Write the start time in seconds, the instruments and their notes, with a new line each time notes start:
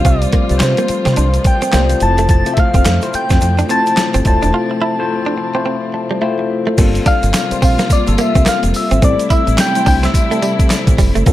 Already playing: string section C3 F3 F4, tine electric piano G3 C4 F4 G4 C5
0.05 fingered electric bass C2, string section A3, clean electric guitar C4, soft synth lead D5, kick, closed hi-hat, shaker
0.22 muted clean electric guitar stroke, closed hi-hat, shaker
0.32 clean electric guitar A#3, kick, closed hi-hat
0.49 fingered electric bass C2, tine electric piano G3 C4 F4 B4, closed hi-hat, shaker
0.58 fingered electric bass C3, tine electric piano C5, snare, clap, closed hi-hat, shaker
0.63 soft synth lead C5
0.77 clean electric guitar A#3, closed hi-hat, shaker
0.88 muted clean electric guitar stroke, muted fingered electric bass stroke, closed hi-hat, shaker
1.05 fingered electric bass C3, tine electric piano G3 C4 F4 A#4, clean electric guitar C4, snare, closed hi-hat, shaker
1.13 clean electric guitar D4, tine electric piano C5, closed hi-hat, shaker
1.18 fingered electric bass C2
1.34 closed hi-hat, shaker
1.44 soft synth lead G5, muted clean electric guitar stroke, kick, closed hi-hat, shaker
1.62 clean electric guitar C4, closed hi-hat, shaker
1.72 fingered electric bass C2, tine electric piano G3 C4 F4 C5, clean electric guitar A#3, snare, clap, closed hi-hat, shaker
1.89 muted clean electric guitar stroke, closed hi-hat, shaker
2.00 fingered electric bass F1, tine electric piano A3 E4 F4 C5, string section C4, soft synth lead A5, closed hi-hat, shaker
2.18 clean electric guitar A3, closed hi-hat, shaker
2.29 soft synth lead A5, kick, closed hi-hat, shaker
2.46 tine electric piano A3 C4 F4 C5, muted clean electric guitar stroke, closed hi-hat, shaker
2.54 soft synth lead E5, kick, closed hi-hat
2.58 clean electric guitar A3, soft synth lead F5
2.74 fingered electric bass F1, clean electric guitar C4, kick, closed hi-hat, shaker
2.85 fingered electric bass F2, clean electric guitar A3, snare, clap, closed hi-hat, shaker
3.02 tine electric piano A3 E4 F4 C5, muted clean electric guitar stroke, closed hi-hat, shaker
3.13 soft synth lead G5, muted fingered electric bass stroke, closed hi-hat, shaker
3.30 fingered electric bass F2, clean electric guitar C4, kick, snare, closed hi-hat, shaker
3.41 fingered electric bass F2, muted clean electric guitar stroke, closed hi-hat, shaker
3.58 clean electric guitar D4, closed hi-hat, shaker
3.69 tine electric piano A3 E4 F4 C5, clean electric guitar C4, soft synth lead A5, closed hi-hat, shaker
3.86 closed hi-hat, shaker
3.97 snare, clap, closed hi-hat, shaker
4.14 fingered electric bass G1, clean electric guitar C4, closed hi-hat, shaker
4.25 fingered electric bass D#1, tine electric piano A3 E4 F4 C5, soft synth lead A5, muted clean electric guitar stroke, kick, closed hi-hat, shaker
4.43 fingered electric bass E1, clean electric guitar D4, closed hi-hat, shaker
4.54 clean electric guitar F4
4.71 muted clean electric guitar stroke
4.82 clean electric guitar E4
4.99 tine electric piano A3 E4 F4 C5
5.26 clean electric guitar D4
5.38 muted clean electric guitar stroke
5.54 tine electric piano A3 E4 F4 C5, clean electric guitar C4
5.66 clean electric guitar C4
5.94 tine electric piano A5, muted clean electric guitar stroke
6.11 clean electric guitar G3
6.21 tine electric piano A3 E4 F4 C5 G5, clean electric guitar A3
6.39 muted clean electric guitar stroke
6.50 tine electric piano E5
6.67 clean electric guitar A3
6.78 fingered electric bass G1, string section C3 A#3 C4 F4, tine electric piano G3 A#3 C4 F4 A4, clean electric guitar A#3, kick, closed hi-hat, crash, shaker
6.95 closed hi-hat, shaker
7.06 clean electric guitar D4, soft synth lead F5, kick, closed hi-hat, tambourine
7.23 fingered electric bass G1, muted clean electric guitar stroke, closed hi-hat, shaker
7.33 muted clean electric guitar stroke, snare, clap, closed hi-hat, tambourine, shaker
7.50 tine electric piano G3 A#3 C4 F4 C5, muted fingered electric bass stroke, closed hi-hat, shaker
7.62 fingered electric bass A#1, clean electric guitar C4, soft synth lead F5, kick, open hi-hat, tambourine
7.79 clean electric guitar A#3, snare, closed hi-hat, shaker
7.90 soft synth lead D5, muted fingered electric bass stroke, muted clean electric guitar stroke, kick, closed hi-hat, tambourine, shaker
8.07 fingered electric bass G1, tine electric piano G3 A#3 C4 F4 A4, closed hi-hat, shaker
8.18 clean electric guitar A#3, soft synth lead E5, closed hi-hat, tambourine
8.35 fingered electric bass C2, clean electric guitar C4, kick, closed hi-hat, shaker
8.45 clean electric guitar A#3, soft synth lead F5, snare, clap, closed hi-hat, tambourine, shaker
8.63 fingered electric bass F1, muted clean electric guitar stroke, closed hi-hat, shaker
8.74 soft synth lead E5, open hi-hat, tambourine, shaker
8.91 fingered electric bass G#1, clean electric guitar C4, closed hi-hat, shaker
9.02 fingered electric bass A1, string section C3 G3 E4, tine electric piano G3 A3 C4 E4 A4, clean electric guitar C4, soft synth lead D5, kick, closed hi-hat, shaker
9.19 closed hi-hat, shaker
9.30 clean electric guitar E4, soft synth lead E5, kick, closed hi-hat, tambourine
9.47 fingered electric bass A1, muted clean electric guitar stroke, closed hi-hat, shaker
9.57 soft synth lead G5, muted clean electric guitar stroke, snare, clap, closed hi-hat, tambourine, shaker
9.75 tine electric piano G3 A3 C4 E4 C5, closed hi-hat, shaker
9.86 fingered electric bass C2, clean electric guitar D4, soft synth lead G5, kick, open hi-hat, tambourine
10.03 clean electric guitar C4, soft synth lead E5, snare, closed hi-hat, shaker
10.14 muted clean electric guitar stroke, kick, closed hi-hat, tambourine, shaker
10.31 tine electric piano G3 A3 C4 E4 A4, clean electric guitar A3, closed hi-hat, shaker
10.42 clean electric guitar G3, closed hi-hat, tambourine
10.59 kick, closed hi-hat, shaker
10.70 muted clean electric guitar stroke, snare, clap, closed hi-hat, tambourine, shaker
10.87 fingered electric bass A1, kick, closed hi-hat, shaker
10.98 fingered electric bass F1, clean electric guitar G3, kick, open hi-hat, tambourine, shaker
11.15 fingered electric bass F#1, clean electric guitar A3, closed hi-hat, shaker
11.26 fingered electric bass G1, string section C3 A#3 F4, tine electric piano G3 A#3 C4 F4 A4, clean electric guitar A#3, kick, closed hi-hat, shaker